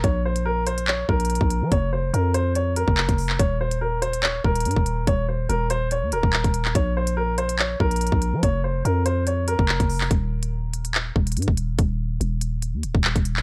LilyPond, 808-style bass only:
\new Staff \with { instrumentName = "808-style bass" } { \clef bass \time 4/4 \key bes \dorian \tempo 4 = 143 bes,,2~ bes,,8 bes,,8. bes,,8 f16 | f,,4 f,4.~ f,16 f,,8 f,,8. | ees,,2~ ees,,8 ees,,8 g,16 ees,,8. | ees,,4 ees,,4~ ees,,16 ees,16 ees,,16 ees,,8 ees,,8. |
bes,,2~ bes,,8 bes,,8. bes,,8 f16 | f,,4 f,4.~ f,16 f,,8 f,,8. | ees,,2~ ees,,8 ees,,8 g,16 ees,,8. | ees,,4 ees,,4~ ees,,16 ees,16 ees,,16 ees,,8 ees,,8. | }